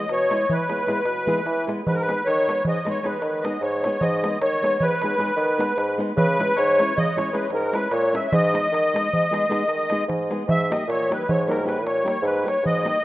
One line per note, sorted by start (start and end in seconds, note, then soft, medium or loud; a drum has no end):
0.00 0.11 D#5 loud
0.00 darbuka tek soft
0.09 0.34 B2 medium
0.09 0.53 C#5 loud
0.09 darbuka tek medium
0.30 0.43 G#3 medium
0.30 0.43 B3 medium
0.30 0.44 E4 medium
0.30 0.44 G#4 medium
0.30 darbuka tek medium
0.41 darbuka tek soft
0.50 0.62 E3 medium
0.50 1.65 B4 medium
0.50 darbuka dum medium
0.69 0.81 G#3 medium
0.69 0.81 B3 medium
0.69 0.82 E4 medium
0.69 0.82 G#4 medium
0.69 darbuka tek medium
0.79 darbuka tek soft
0.87 0.99 G#3 medium
0.87 0.99 B3 medium
0.87 0.99 E4 medium
0.87 1.00 G#4 medium
0.87 darbuka tek medium
1.05 1.29 B2 medium
1.05 darbuka tek medium
1.26 1.39 G#3 medium
1.26 1.39 B3 medium
1.26 1.39 E4 medium
1.26 1.40 G#4 medium
1.26 darbuka dum medium
1.46 1.70 E3 medium
1.46 darbuka tek medium
1.67 1.79 G#3 medium
1.67 1.79 B3 medium
1.67 1.80 E4 medium
1.67 1.80 G#4 medium
1.67 darbuka tek medium
1.87 2.11 G#2 medium
1.87 1.95 B4 medium
1.87 darbuka dum medium
1.95 2.02 A#4 loud
2.02 2.27 B4 loud
2.08 2.20 G#3 medium
2.08 2.20 B3 medium
2.08 2.20 D#4 medium
2.08 2.21 G#4 medium
2.08 darbuka tek medium
2.25 2.51 D#3 medium
2.25 2.63 C#5 loud
2.25 darbuka tek medium
2.47 2.60 G#3 medium
2.47 2.60 B3 soft
2.47 2.60 D#4 medium
2.47 2.60 G#4 medium
2.47 darbuka tek medium
2.65 2.79 G#2 medium
2.65 2.88 D#5 medium
2.65 darbuka dum medium
2.85 2.97 G#3 medium
2.85 2.98 B3 medium
2.85 2.98 D#4 medium
2.85 2.99 G#4 medium
2.85 darbuka tek medium
2.90 3.06 C#5 medium
3.03 3.15 G#3 medium
3.03 3.16 B3 medium
3.03 3.16 D#4 medium
3.03 3.16 G#4 medium
3.03 3.45 B4 medium
3.03 darbuka tek medium
3.13 darbuka tek soft
3.21 3.45 D#3 medium
3.21 darbuka tek medium
3.34 darbuka tek soft
3.43 3.56 G#3 medium
3.43 3.56 B3 medium
3.43 3.56 D#4 medium
3.43 3.57 G#4 medium
3.43 3.62 D#5 medium
3.43 darbuka tek medium
3.61 3.85 G#2 medium
3.61 4.04 C#5 medium
3.61 darbuka tek medium
3.84 3.96 G#3 medium
3.84 3.97 B3 medium
3.84 3.97 D#4 soft
3.84 3.97 G#4 medium
3.84 darbuka tek medium
3.93 darbuka tek soft
4.01 4.26 G#2 loud
4.01 4.39 D#5 loud
4.01 darbuka dum medium
4.23 4.35 G#3 medium
4.23 4.36 B3 medium
4.23 4.36 D#4 medium
4.23 4.36 G#4 medium
4.23 darbuka tek medium
4.41 4.66 D#3 medium
4.41 4.84 C#5 loud
4.41 darbuka tek medium
4.62 4.75 G#3 medium
4.62 4.76 B3 medium
4.62 4.76 D#4 soft
4.62 4.76 G#4 medium
4.62 darbuka tek medium
4.80 4.94 G#2 medium
4.80 5.96 B4 loud
4.80 darbuka dum medium
5.02 5.14 G#3 medium
5.02 5.14 B3 medium
5.02 5.14 D#4 medium
5.02 5.15 G#4 medium
5.02 darbuka tek medium
5.17 5.30 G#3 medium
5.17 5.30 B3 medium
5.17 5.31 D#4 medium
5.17 5.31 G#4 medium
5.17 darbuka tek medium
5.29 darbuka tek soft
5.36 5.61 D#3 medium
5.36 darbuka tek medium
5.49 darbuka tek soft
5.58 5.71 G#3 medium
5.58 5.71 B3 medium
5.58 5.71 D#4 medium
5.58 5.72 G#4 medium
5.58 darbuka tek medium
5.77 6.01 G#2 medium
5.77 darbuka tek medium
5.98 6.10 G#3 medium
5.98 6.11 B3 medium
5.98 6.11 D#4 medium
5.98 6.11 G#4 medium
5.98 darbuka tek medium
6.09 darbuka tek soft
6.17 6.41 C#3 loud
6.17 6.59 B4 loud
6.17 darbuka dum medium
6.38 6.51 G#3 medium
6.38 6.51 C#4 medium
6.38 6.52 E4 soft
6.38 6.52 G#4 medium
6.38 darbuka tek medium
6.57 6.82 G#2 medium
6.57 6.99 C#5 loud
6.57 darbuka tek medium
6.78 6.91 G#3 medium
6.78 6.91 C#4 medium
6.78 6.92 E4 medium
6.78 6.92 G#4 medium
6.78 darbuka tek medium
6.97 7.09 C#3 medium
6.97 7.16 D#5 loud
6.97 darbuka dum medium
7.16 7.28 G#3 medium
7.16 7.29 C#4 medium
7.16 7.29 E4 medium
7.16 7.29 G#4 medium
7.16 7.35 C#5 loud
7.16 darbuka tek medium
7.33 7.46 G#3 medium
7.33 7.46 C#4 medium
7.33 7.46 E4 medium
7.33 7.47 G#4 medium
7.33 7.50 B4 medium
7.33 darbuka tek medium
7.44 darbuka tek soft
7.50 7.76 G#2 medium
7.50 7.76 A#4 medium
7.50 darbuka tek medium
7.63 darbuka tek soft
7.72 7.86 G#3 medium
7.72 7.86 C#4 medium
7.72 7.86 E4 medium
7.72 7.87 G#4 medium
7.72 7.93 B4 loud
7.72 darbuka tek medium
7.91 8.16 A#2 loud
7.91 8.15 C#5 medium
7.91 darbuka tek medium
8.13 8.26 G#3 medium
8.13 8.26 C#4 medium
8.13 8.26 E4 medium
8.13 8.27 G#4 medium
8.13 8.26 E5 loud
8.13 darbuka tek medium
8.24 8.34 E5 soft
8.24 darbuka tek soft
8.32 8.57 G#2 medium
8.32 10.04 D#5 loud
8.32 darbuka dum loud
8.52 8.66 G#3 medium
8.52 8.66 B3 medium
8.52 8.66 D#4 medium
8.52 8.66 G#4 medium
8.52 darbuka tek medium
8.65 darbuka tek soft
8.72 8.96 D#3 medium
8.72 darbuka tek medium
8.86 darbuka tek soft
8.94 9.06 G#3 medium
8.94 9.07 B3 medium
8.94 9.07 D#4 medium
8.94 9.07 G#4 medium
8.94 darbuka tek medium
9.13 9.25 G#2 medium
9.13 darbuka dum medium
9.24 darbuka tek soft
9.31 9.44 G#3 medium
9.31 9.44 B3 medium
9.31 9.44 D#4 medium
9.31 9.44 G#4 medium
9.31 darbuka tek medium
9.43 darbuka tek soft
9.49 9.61 G#3 medium
9.49 9.62 B3 medium
9.49 9.62 D#4 medium
9.49 9.62 G#4 medium
9.49 darbuka tek medium
9.61 darbuka tek soft
9.67 9.92 D#3 medium
9.67 darbuka tek medium
9.90 10.02 G#3 medium
9.90 10.03 B3 medium
9.90 10.03 D#4 medium
9.90 10.03 G#4 medium
9.90 darbuka tek medium
10.08 10.32 G#2 medium
10.08 darbuka tek medium
10.08 darbuka dum medium
10.20 darbuka tek soft
10.30 10.42 G#3 medium
10.30 10.42 B3 medium
10.30 10.42 D#4 medium
10.30 10.43 G#4 medium
10.30 darbuka tek medium
10.48 10.72 G#2 medium
10.48 10.72 E5 loud
10.48 darbuka dum medium
10.70 10.82 G3 medium
10.70 10.82 A#3 medium
10.70 10.83 D#4 medium
10.70 10.83 G4 medium
10.70 10.88 D#5 medium
10.70 darbuka tek medium
10.87 11.12 A#2 medium
10.87 11.12 C#5 loud
10.87 darbuka tek medium
11.01 darbuka tek soft
11.09 11.22 G3 soft
11.09 11.22 A#3 soft
11.09 11.22 D#4 soft
11.09 11.22 G4 soft
11.09 11.30 B4 medium
11.09 darbuka tek medium
11.29 11.84 G#2 medium
11.29 11.50 C#5 medium
11.29 darbuka dum medium
11.41 darbuka tek soft
11.47 11.59 G3 medium
11.47 11.59 A#3 medium
11.47 11.60 D#4 medium
11.47 11.60 G4 medium
11.47 11.65 A#4 medium
11.51 darbuka tek medium
11.64 11.76 G3 medium
11.64 11.77 A#3 medium
11.64 11.77 D#4 medium
11.64 11.77 G4 medium
11.64 11.84 B4 medium
11.69 darbuka tek medium
11.83 12.07 A#2 medium
11.83 12.07 C#5 medium
11.87 darbuka tek medium
12.04 12.16 G3 medium
12.04 12.17 A#3 medium
12.04 12.17 D#4 medium
12.04 12.17 G4 medium
12.04 darbuka tek medium
12.08 12.25 C#5 medium
12.22 12.46 G#2 loud
12.22 12.47 B4 medium
12.22 darbuka tek medium
12.37 darbuka tek soft
12.44 12.56 G3 medium
12.44 12.56 A#3 medium
12.44 12.57 D#4 medium
12.44 12.57 G4 medium
12.44 12.64 C#5 medium
12.48 darbuka tek medium
12.57 darbuka tek soft
12.63 12.87 G#2 medium
12.63 13.04 D#5 loud
12.63 darbuka dum medium
12.83 12.96 G3 medium
12.83 12.96 A#3 medium
12.83 12.97 D#4 medium
12.83 12.97 G4 medium
12.83 darbuka tek medium